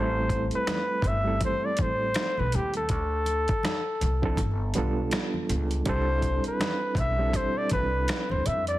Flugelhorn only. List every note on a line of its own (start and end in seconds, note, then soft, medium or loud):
0.00 0.49 C5 loud
0.55 1.09 B4 medium
1.07 1.43 E5 loud
1.44 1.66 C5 loud
1.65 1.82 D5 medium
1.81 2.40 C5 loud
2.39 2.57 B4 medium
2.55 2.75 G4 medium
2.76 4.93 A4 medium
5.88 6.42 C5 loud
6.47 7.00 B4 medium
6.99 7.38 E5 loud
7.36 7.59 C5 loud
7.57 7.72 D5 medium
7.73 8.32 B4 loud
8.31 8.48 C5 medium
8.46 8.67 E5 medium
8.68 8.79 D5 loud